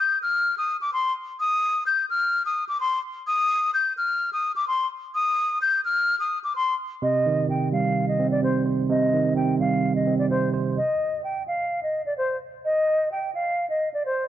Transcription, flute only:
0, 0, Header, 1, 2, 480
1, 0, Start_track
1, 0, Key_signature, -3, "minor"
1, 0, Tempo, 468750
1, 1430, Time_signature, 4, 2, 24, 8
1, 14623, End_track
2, 0, Start_track
2, 0, Title_t, "Flute"
2, 0, Program_c, 0, 73
2, 0, Note_on_c, 0, 91, 78
2, 190, Note_off_c, 0, 91, 0
2, 231, Note_on_c, 0, 89, 77
2, 569, Note_off_c, 0, 89, 0
2, 593, Note_on_c, 0, 87, 82
2, 788, Note_off_c, 0, 87, 0
2, 833, Note_on_c, 0, 86, 82
2, 930, Note_off_c, 0, 86, 0
2, 954, Note_on_c, 0, 84, 89
2, 1149, Note_off_c, 0, 84, 0
2, 1434, Note_on_c, 0, 87, 105
2, 1883, Note_off_c, 0, 87, 0
2, 1910, Note_on_c, 0, 91, 85
2, 2106, Note_off_c, 0, 91, 0
2, 2152, Note_on_c, 0, 89, 83
2, 2489, Note_off_c, 0, 89, 0
2, 2513, Note_on_c, 0, 87, 81
2, 2708, Note_off_c, 0, 87, 0
2, 2751, Note_on_c, 0, 86, 77
2, 2849, Note_off_c, 0, 86, 0
2, 2870, Note_on_c, 0, 84, 93
2, 3066, Note_off_c, 0, 84, 0
2, 3350, Note_on_c, 0, 87, 103
2, 3801, Note_off_c, 0, 87, 0
2, 3830, Note_on_c, 0, 91, 86
2, 4026, Note_off_c, 0, 91, 0
2, 4070, Note_on_c, 0, 89, 81
2, 4408, Note_off_c, 0, 89, 0
2, 4434, Note_on_c, 0, 87, 82
2, 4628, Note_off_c, 0, 87, 0
2, 4668, Note_on_c, 0, 86, 81
2, 4767, Note_off_c, 0, 86, 0
2, 4788, Note_on_c, 0, 84, 97
2, 4985, Note_off_c, 0, 84, 0
2, 5272, Note_on_c, 0, 87, 102
2, 5722, Note_off_c, 0, 87, 0
2, 5754, Note_on_c, 0, 91, 89
2, 5948, Note_off_c, 0, 91, 0
2, 5988, Note_on_c, 0, 89, 83
2, 6327, Note_off_c, 0, 89, 0
2, 6348, Note_on_c, 0, 87, 79
2, 6545, Note_off_c, 0, 87, 0
2, 6595, Note_on_c, 0, 86, 74
2, 6691, Note_off_c, 0, 86, 0
2, 6714, Note_on_c, 0, 84, 95
2, 6908, Note_off_c, 0, 84, 0
2, 7196, Note_on_c, 0, 75, 98
2, 7644, Note_off_c, 0, 75, 0
2, 7680, Note_on_c, 0, 79, 79
2, 7872, Note_off_c, 0, 79, 0
2, 7913, Note_on_c, 0, 77, 80
2, 8250, Note_off_c, 0, 77, 0
2, 8276, Note_on_c, 0, 75, 83
2, 8470, Note_off_c, 0, 75, 0
2, 8512, Note_on_c, 0, 74, 81
2, 8609, Note_off_c, 0, 74, 0
2, 8635, Note_on_c, 0, 72, 91
2, 8829, Note_off_c, 0, 72, 0
2, 9113, Note_on_c, 0, 75, 101
2, 9563, Note_off_c, 0, 75, 0
2, 9587, Note_on_c, 0, 79, 83
2, 9784, Note_off_c, 0, 79, 0
2, 9831, Note_on_c, 0, 77, 83
2, 10169, Note_off_c, 0, 77, 0
2, 10193, Note_on_c, 0, 75, 78
2, 10388, Note_off_c, 0, 75, 0
2, 10431, Note_on_c, 0, 74, 76
2, 10529, Note_off_c, 0, 74, 0
2, 10548, Note_on_c, 0, 72, 91
2, 10745, Note_off_c, 0, 72, 0
2, 11030, Note_on_c, 0, 75, 95
2, 11481, Note_off_c, 0, 75, 0
2, 11511, Note_on_c, 0, 79, 81
2, 11706, Note_off_c, 0, 79, 0
2, 11750, Note_on_c, 0, 77, 78
2, 12089, Note_off_c, 0, 77, 0
2, 12112, Note_on_c, 0, 75, 78
2, 12308, Note_off_c, 0, 75, 0
2, 12349, Note_on_c, 0, 74, 80
2, 12447, Note_off_c, 0, 74, 0
2, 12468, Note_on_c, 0, 72, 97
2, 12665, Note_off_c, 0, 72, 0
2, 12953, Note_on_c, 0, 75, 99
2, 13403, Note_off_c, 0, 75, 0
2, 13433, Note_on_c, 0, 79, 87
2, 13628, Note_off_c, 0, 79, 0
2, 13668, Note_on_c, 0, 77, 87
2, 14007, Note_off_c, 0, 77, 0
2, 14026, Note_on_c, 0, 75, 77
2, 14224, Note_off_c, 0, 75, 0
2, 14272, Note_on_c, 0, 74, 72
2, 14369, Note_off_c, 0, 74, 0
2, 14393, Note_on_c, 0, 72, 98
2, 14588, Note_off_c, 0, 72, 0
2, 14623, End_track
0, 0, End_of_file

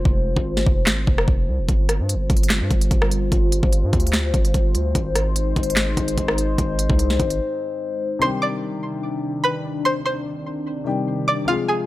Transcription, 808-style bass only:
0, 0, Header, 1, 2, 480
1, 0, Start_track
1, 0, Key_signature, -3, "minor"
1, 0, Tempo, 408163
1, 62, Time_signature, 4, 2, 24, 8
1, 13950, End_track
2, 0, Start_track
2, 0, Title_t, "808-style bass"
2, 0, Program_c, 0, 38
2, 62, Note_on_c, 0, 29, 114
2, 415, Note_off_c, 0, 29, 0
2, 430, Note_on_c, 0, 32, 99
2, 768, Note_off_c, 0, 32, 0
2, 782, Note_on_c, 0, 29, 101
2, 1022, Note_on_c, 0, 32, 99
2, 1040, Note_off_c, 0, 29, 0
2, 1250, Note_off_c, 0, 32, 0
2, 1262, Note_on_c, 0, 29, 105
2, 1493, Note_off_c, 0, 29, 0
2, 1503, Note_on_c, 0, 29, 105
2, 1742, Note_on_c, 0, 36, 102
2, 1760, Note_off_c, 0, 29, 0
2, 1869, Note_on_c, 0, 29, 99
2, 1887, Note_off_c, 0, 36, 0
2, 1977, Note_off_c, 0, 29, 0
2, 1982, Note_on_c, 0, 31, 103
2, 2350, Note_on_c, 0, 43, 96
2, 2367, Note_off_c, 0, 31, 0
2, 2526, Note_on_c, 0, 31, 103
2, 2544, Note_off_c, 0, 43, 0
2, 2694, Note_off_c, 0, 31, 0
2, 2702, Note_on_c, 0, 31, 103
2, 3069, Note_on_c, 0, 43, 104
2, 3087, Note_off_c, 0, 31, 0
2, 3177, Note_off_c, 0, 43, 0
2, 3182, Note_on_c, 0, 31, 102
2, 3413, Note_off_c, 0, 31, 0
2, 3422, Note_on_c, 0, 31, 106
2, 3883, Note_off_c, 0, 31, 0
2, 3902, Note_on_c, 0, 31, 112
2, 4255, Note_off_c, 0, 31, 0
2, 4269, Note_on_c, 0, 31, 105
2, 4509, Note_on_c, 0, 43, 101
2, 4527, Note_off_c, 0, 31, 0
2, 4617, Note_off_c, 0, 43, 0
2, 4622, Note_on_c, 0, 38, 102
2, 5083, Note_off_c, 0, 38, 0
2, 5102, Note_on_c, 0, 31, 106
2, 5333, Note_off_c, 0, 31, 0
2, 5342, Note_on_c, 0, 31, 103
2, 5583, Note_on_c, 0, 38, 101
2, 5600, Note_off_c, 0, 31, 0
2, 5811, Note_off_c, 0, 38, 0
2, 5822, Note_on_c, 0, 32, 113
2, 6514, Note_off_c, 0, 32, 0
2, 6542, Note_on_c, 0, 32, 99
2, 7003, Note_off_c, 0, 32, 0
2, 7022, Note_on_c, 0, 32, 108
2, 7253, Note_off_c, 0, 32, 0
2, 7263, Note_on_c, 0, 32, 102
2, 7723, Note_off_c, 0, 32, 0
2, 7743, Note_on_c, 0, 32, 111
2, 8095, Note_off_c, 0, 32, 0
2, 8110, Note_on_c, 0, 36, 103
2, 8448, Note_off_c, 0, 36, 0
2, 8463, Note_on_c, 0, 32, 106
2, 8703, Note_off_c, 0, 32, 0
2, 13950, End_track
0, 0, End_of_file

